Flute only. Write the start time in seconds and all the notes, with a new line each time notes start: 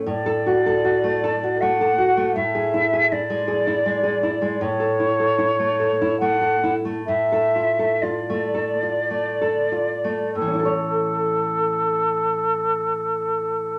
0.07 D5
1.60 F#5
2.35 E5
3.12 D5
4.61 C#5
6.19 F#5
7.06 E5
8.01 D5
10.34 A4